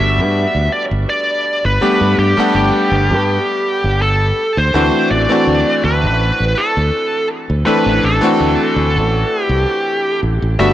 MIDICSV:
0, 0, Header, 1, 5, 480
1, 0, Start_track
1, 0, Tempo, 731707
1, 1191, Time_signature, 4, 2, 24, 8
1, 7041, End_track
2, 0, Start_track
2, 0, Title_t, "Lead electric guitar"
2, 0, Program_c, 0, 29
2, 0, Note_on_c, 0, 76, 110
2, 475, Note_on_c, 0, 74, 96
2, 483, Note_off_c, 0, 76, 0
2, 539, Note_off_c, 0, 74, 0
2, 718, Note_on_c, 0, 74, 98
2, 1083, Note_off_c, 0, 74, 0
2, 1086, Note_on_c, 0, 71, 91
2, 1410, Note_off_c, 0, 71, 0
2, 1437, Note_on_c, 0, 67, 89
2, 1668, Note_off_c, 0, 67, 0
2, 1676, Note_on_c, 0, 67, 89
2, 2634, Note_off_c, 0, 67, 0
2, 2637, Note_on_c, 0, 69, 84
2, 3004, Note_on_c, 0, 72, 93
2, 3013, Note_off_c, 0, 69, 0
2, 3352, Note_off_c, 0, 72, 0
2, 3355, Note_on_c, 0, 74, 99
2, 3833, Note_off_c, 0, 74, 0
2, 3836, Note_on_c, 0, 71, 96
2, 4315, Note_on_c, 0, 69, 81
2, 4328, Note_off_c, 0, 71, 0
2, 4767, Note_off_c, 0, 69, 0
2, 5029, Note_on_c, 0, 71, 106
2, 5277, Note_off_c, 0, 71, 0
2, 5277, Note_on_c, 0, 69, 110
2, 6189, Note_off_c, 0, 69, 0
2, 6189, Note_on_c, 0, 67, 110
2, 6688, Note_off_c, 0, 67, 0
2, 6952, Note_on_c, 0, 76, 110
2, 7041, Note_off_c, 0, 76, 0
2, 7041, End_track
3, 0, Start_track
3, 0, Title_t, "Electric grand piano"
3, 0, Program_c, 1, 2
3, 0, Control_c, 1, 64, 127
3, 0, Note_on_c, 1, 55, 78
3, 0, Note_on_c, 1, 57, 75
3, 0, Note_on_c, 1, 59, 69
3, 0, Note_on_c, 1, 62, 76
3, 0, Note_on_c, 1, 66, 86
3, 1157, Note_off_c, 1, 55, 0
3, 1160, Note_off_c, 1, 57, 0
3, 1163, Note_off_c, 1, 59, 0
3, 1165, Note_off_c, 1, 62, 0
3, 1167, Note_off_c, 1, 66, 0
3, 1187, Note_on_c, 1, 55, 75
3, 1189, Note_on_c, 1, 57, 71
3, 1192, Note_on_c, 1, 59, 73
3, 1193, Note_on_c, 1, 62, 75
3, 1196, Note_on_c, 1, 67, 86
3, 1526, Note_off_c, 1, 55, 0
3, 1528, Note_off_c, 1, 57, 0
3, 1529, Note_off_c, 1, 59, 0
3, 1530, Note_off_c, 1, 62, 0
3, 1531, Note_off_c, 1, 67, 0
3, 1554, Note_on_c, 1, 55, 85
3, 1558, Note_on_c, 1, 57, 80
3, 1565, Note_on_c, 1, 59, 82
3, 1568, Note_on_c, 1, 62, 84
3, 1573, Note_on_c, 1, 78, 98
3, 2855, Note_off_c, 1, 55, 0
3, 2857, Note_off_c, 1, 57, 0
3, 2861, Note_off_c, 1, 59, 0
3, 2862, Note_off_c, 1, 62, 0
3, 2865, Note_off_c, 1, 78, 0
3, 2881, Control_c, 1, 64, 0
3, 3005, Control_c, 1, 64, 127
3, 3109, Note_on_c, 1, 52, 83
3, 3112, Note_on_c, 1, 57, 76
3, 3116, Note_on_c, 1, 60, 77
3, 3118, Note_on_c, 1, 62, 73
3, 3118, Note_on_c, 1, 66, 93
3, 3448, Note_off_c, 1, 52, 0
3, 3449, Note_off_c, 1, 57, 0
3, 3451, Note_off_c, 1, 60, 0
3, 3452, Note_off_c, 1, 62, 0
3, 3452, Note_off_c, 1, 66, 0
3, 3470, Note_on_c, 1, 52, 80
3, 3474, Note_on_c, 1, 57, 76
3, 3478, Note_on_c, 1, 60, 72
3, 3486, Note_on_c, 1, 62, 74
3, 3489, Note_on_c, 1, 66, 89
3, 5000, Note_off_c, 1, 52, 0
3, 5001, Note_off_c, 1, 57, 0
3, 5004, Note_off_c, 1, 60, 0
3, 5008, Note_off_c, 1, 62, 0
3, 5009, Note_off_c, 1, 66, 0
3, 5025, Note_on_c, 1, 52, 81
3, 5026, Note_on_c, 1, 57, 75
3, 5030, Note_on_c, 1, 60, 72
3, 5033, Note_on_c, 1, 62, 74
3, 5035, Note_on_c, 1, 69, 90
3, 5366, Note_off_c, 1, 52, 0
3, 5366, Note_off_c, 1, 57, 0
3, 5368, Note_off_c, 1, 60, 0
3, 5370, Note_off_c, 1, 62, 0
3, 5371, Note_off_c, 1, 69, 0
3, 5385, Note_on_c, 1, 52, 89
3, 5390, Note_on_c, 1, 57, 86
3, 5395, Note_on_c, 1, 60, 84
3, 5399, Note_on_c, 1, 62, 83
3, 5404, Note_on_c, 1, 66, 98
3, 6917, Note_off_c, 1, 52, 0
3, 6920, Note_off_c, 1, 57, 0
3, 6922, Note_off_c, 1, 60, 0
3, 6924, Note_off_c, 1, 62, 0
3, 6927, Note_off_c, 1, 66, 0
3, 6946, Note_on_c, 1, 55, 80
3, 6948, Note_on_c, 1, 57, 76
3, 6950, Note_on_c, 1, 59, 74
3, 6953, Note_on_c, 1, 62, 75
3, 6955, Note_on_c, 1, 66, 92
3, 6961, Control_c, 1, 64, 0
3, 7041, Note_off_c, 1, 55, 0
3, 7041, Note_off_c, 1, 57, 0
3, 7041, Note_off_c, 1, 59, 0
3, 7041, Note_off_c, 1, 62, 0
3, 7041, Note_off_c, 1, 66, 0
3, 7041, End_track
4, 0, Start_track
4, 0, Title_t, "Fingered electric bass"
4, 0, Program_c, 2, 33
4, 0, Note_on_c, 2, 31, 93
4, 117, Note_on_c, 2, 43, 92
4, 127, Note_off_c, 2, 31, 0
4, 295, Note_off_c, 2, 43, 0
4, 358, Note_on_c, 2, 38, 80
4, 443, Note_off_c, 2, 38, 0
4, 598, Note_on_c, 2, 31, 88
4, 683, Note_off_c, 2, 31, 0
4, 1080, Note_on_c, 2, 31, 91
4, 1164, Note_off_c, 2, 31, 0
4, 1318, Note_on_c, 2, 43, 95
4, 1403, Note_off_c, 2, 43, 0
4, 1431, Note_on_c, 2, 43, 76
4, 1527, Note_off_c, 2, 43, 0
4, 1669, Note_on_c, 2, 31, 75
4, 1767, Note_off_c, 2, 31, 0
4, 1911, Note_on_c, 2, 31, 92
4, 2035, Note_on_c, 2, 43, 96
4, 2045, Note_off_c, 2, 31, 0
4, 2214, Note_off_c, 2, 43, 0
4, 2519, Note_on_c, 2, 31, 87
4, 2827, Note_off_c, 2, 31, 0
4, 2999, Note_on_c, 2, 38, 89
4, 3084, Note_off_c, 2, 38, 0
4, 3111, Note_on_c, 2, 38, 97
4, 3207, Note_off_c, 2, 38, 0
4, 3351, Note_on_c, 2, 33, 74
4, 3447, Note_off_c, 2, 33, 0
4, 3589, Note_on_c, 2, 38, 72
4, 3686, Note_off_c, 2, 38, 0
4, 3832, Note_on_c, 2, 38, 95
4, 3960, Note_on_c, 2, 33, 96
4, 3970, Note_off_c, 2, 38, 0
4, 4136, Note_off_c, 2, 33, 0
4, 4200, Note_on_c, 2, 33, 81
4, 4284, Note_off_c, 2, 33, 0
4, 4440, Note_on_c, 2, 38, 89
4, 4524, Note_off_c, 2, 38, 0
4, 4919, Note_on_c, 2, 38, 86
4, 5003, Note_off_c, 2, 38, 0
4, 5158, Note_on_c, 2, 33, 98
4, 5243, Note_off_c, 2, 33, 0
4, 5272, Note_on_c, 2, 33, 80
4, 5368, Note_off_c, 2, 33, 0
4, 5511, Note_on_c, 2, 38, 77
4, 5608, Note_off_c, 2, 38, 0
4, 5748, Note_on_c, 2, 38, 93
4, 5876, Note_on_c, 2, 33, 90
4, 5886, Note_off_c, 2, 38, 0
4, 6054, Note_off_c, 2, 33, 0
4, 6227, Note_on_c, 2, 36, 94
4, 6325, Note_off_c, 2, 36, 0
4, 6709, Note_on_c, 2, 33, 81
4, 6807, Note_off_c, 2, 33, 0
4, 6838, Note_on_c, 2, 33, 88
4, 6923, Note_off_c, 2, 33, 0
4, 6950, Note_on_c, 2, 31, 93
4, 7041, Note_off_c, 2, 31, 0
4, 7041, End_track
5, 0, Start_track
5, 0, Title_t, "Muted fingered electric bass strokes"
5, 1191, Note_on_c, 9, 29, 41
5, 1257, Note_off_c, 9, 29, 0
5, 1556, Note_on_c, 9, 29, 40
5, 1622, Note_off_c, 9, 29, 0
5, 7041, End_track
0, 0, End_of_file